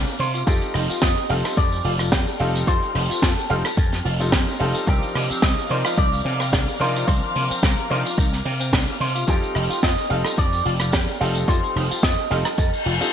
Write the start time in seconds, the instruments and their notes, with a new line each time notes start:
Already playing: string section A#4 F5 D6 F6
0.07 closed hi-hat, tambourine
0.19 slap bass C3, clean electric guitar C5, open hi-hat
0.34 clean electric guitar F4, closed hi-hat, tambourine
0.46 slap bass F2, grand piano G3 C4 D#4 F4 A4, clean electric guitar F4 G4, string section A4 G5 F6, kick, closed hi-hat, tambourine
0.62 closed hi-hat, tambourine
0.74 slap bass F1, clean electric guitar D#4, cross-stick, open hi-hat
0.89 clean electric guitar F4, closed hi-hat, tambourine
1.02 slap bass F2, clean electric guitar F4 D#5, kick, snare, closed hi-hat, tambourine
1.17 closed hi-hat, tambourine
1.29 slap bass F1, grand piano G3 C4 D#4 F4 A4, clean electric guitar F5, open hi-hat
1.44 clean electric guitar A4, cross-stick, closed hi-hat, tambourine
1.57 slap bass F2, clean electric guitar A4 D5, kick, closed hi-hat, tambourine
1.72 closed hi-hat, tambourine
1.85 slap bass F1, clean electric guitar F4, open hi-hat
1.99 clean electric guitar F4, cross-stick, closed hi-hat, tambourine
2.12 slap bass F2, clean electric guitar G4, kick, snare, closed hi-hat, tambourine
2.27 closed hi-hat, tambourine
2.39 slap bass F1, grand piano G3 C4 D#4 F4 A4, clean electric guitar F5, open hi-hat
2.54 clean electric guitar A4, closed hi-hat, tambourine
2.67 slap bass F2, grand piano G3 C4 D#4 F4 A4, clean electric guitar F4 C5, kick, closed hi-hat, tambourine
2.83 closed hi-hat, tambourine
2.95 slap bass F1, clean electric guitar D#4, cross-stick, open hi-hat
3.10 clean electric guitar F4, closed hi-hat, tambourine
3.22 slap bass F2, clean electric guitar F4 A4, kick, snare, closed hi-hat, tambourine
3.38 closed hi-hat, tambourine
3.50 slap bass F1, grand piano G3 C4 D#4 F4 A4, clean electric guitar F5, open hi-hat
3.64 clean electric guitar A4, cross-stick, closed hi-hat, tambourine
3.77 slap bass F2, clean electric guitar A4, kick, closed hi-hat, tambourine
3.92 snare, closed hi-hat, tambourine
4.05 slap bass F1, clean electric guitar F4, open hi-hat
4.19 grand piano G3 C4 D#4 F4 A4, clean electric guitar F4, closed hi-hat, tambourine
4.32 slap bass F2, clean electric guitar G4, kick, snare, closed hi-hat, tambourine
4.48 closed hi-hat, tambourine
4.59 slap bass F1, grand piano G3 C4 D#4 F4 A4, clean electric guitar F5, open hi-hat
4.75 clean electric guitar A4, closed hi-hat, tambourine
4.86 slap bass C2, grand piano F3 C4 D4 D#4 A#4, clean electric guitar C4 G4, string section A#4 F5 D6, kick, closed hi-hat, tambourine
5.03 closed hi-hat, tambourine
5.15 slap bass C3, clean electric guitar A#3, cross-stick, open hi-hat
5.30 clean electric guitar C4, muted slap bass stroke, closed hi-hat, tambourine
5.42 slap bass C2, clean electric guitar C4 D#5, kick, snare, closed hi-hat, tambourine
5.58 closed hi-hat, tambourine
5.69 slap bass C3, grand piano F3 C4 D#4 A#4 D5, clean electric guitar C5, open hi-hat
5.85 clean electric guitar F4, cross-stick, closed hi-hat, tambourine
5.98 slap bass C2, clean electric guitar D#4 D5, kick, closed hi-hat, tambourine
6.12 closed hi-hat, tambourine
6.25 slap bass C3, clean electric guitar C4, open hi-hat
6.40 clean electric guitar C4, cross-stick, closed hi-hat, tambourine
6.53 slap bass C2, clean electric guitar D4, kick, snare, closed hi-hat, tambourine
6.68 closed hi-hat, tambourine
6.80 slap bass C3, grand piano F3 C4 D4 D#4 A#4, clean electric guitar C5, open hi-hat
6.95 clean electric guitar F4, closed hi-hat, tambourine
7.07 slap bass C2, grand piano D#3 F3 C4 D4 A#4, clean electric guitar C4 C5, kick, closed hi-hat, tambourine
7.23 closed hi-hat, tambourine
7.35 slap bass C3, clean electric guitar A#3, open hi-hat
7.50 clean electric guitar C4, muted slap bass stroke, closed hi-hat, tambourine
7.63 slap bass C2, clean electric guitar C4 A#4, kick, snare, closed hi-hat, tambourine
7.78 closed hi-hat, tambourine
7.90 slap bass C3, grand piano F3 C4 D4 D#4 A#4, clean electric guitar C5, open hi-hat
8.05 clean electric guitar F4, closed hi-hat, tambourine
8.18 slap bass C2, clean electric guitar D#4, kick, closed hi-hat, tambourine
8.33 snare, closed hi-hat, tambourine
8.45 slap bass C3, clean electric guitar C4, open hi-hat
8.60 clean electric guitar C4, closed hi-hat, tambourine
8.73 slap bass C2, clean electric guitar D4, kick, snare, closed hi-hat, tambourine
8.88 closed hi-hat, tambourine
9.00 slap bass C3, clean electric guitar C5, open hi-hat
9.15 clean electric guitar F4, closed hi-hat, tambourine
9.27 slap bass F2, grand piano G3 C4 D#4 F4 A4, clean electric guitar F4 G4, string section A4 G5, kick, closed hi-hat, tambourine
9.43 closed hi-hat, tambourine
9.55 slap bass F1, clean electric guitar D#4, cross-stick, open hi-hat
9.70 clean electric guitar F4, muted slap bass stroke, closed hi-hat, tambourine
9.83 slap bass F2, clean electric guitar F4 D#5, kick, snare, closed hi-hat, tambourine
9.98 closed hi-hat, tambourine
10.09 slap bass F1, grand piano G3 C4 D#4 F4 A4, clean electric guitar F5, open hi-hat
10.25 clean electric guitar A4, cross-stick, closed hi-hat, tambourine
10.38 slap bass F2, clean electric guitar A4 D5, kick, closed hi-hat, tambourine
10.53 closed hi-hat, tambourine
10.65 slap bass F1, clean electric guitar F4, open hi-hat
10.80 clean electric guitar F4, cross-stick, closed hi-hat, tambourine
10.92 slap bass F2, clean electric guitar G4, kick, snare, closed hi-hat, tambourine
11.08 closed hi-hat, tambourine
11.20 slap bass F1, grand piano G3 C4 D#4 F4 A4, clean electric guitar F5, open hi-hat
11.35 clean electric guitar A4, closed hi-hat, tambourine
11.48 slap bass F2, grand piano G3 C4 D#4 F4 A4, clean electric guitar F4 C5, kick, closed hi-hat, tambourine
11.63 closed hi-hat, tambourine
11.76 slap bass F1, clean electric guitar D#4, cross-stick, open hi-hat
11.91 clean electric guitar F4, muted slap bass stroke, closed hi-hat, tambourine
12.03 slap bass F2, clean electric guitar F4 D#5, kick, snare, closed hi-hat, tambourine
12.18 closed hi-hat, tambourine
12.30 slap bass F1, grand piano G3 C4 D#4 F4 A4, clean electric guitar F5, snare, open hi-hat
12.45 clean electric guitar A4, cross-stick, closed hi-hat, tambourine
12.58 slap bass F2, clean electric guitar A4, kick, closed hi-hat, tambourine, reverse cymbal
12.73 closed hi-hat, tambourine
12.86 slap bass F1, clean electric guitar F4, open hi-hat
13.00 grand piano G3 C4 D#4 F4 A4, clean electric guitar F4, closed hi-hat, tambourine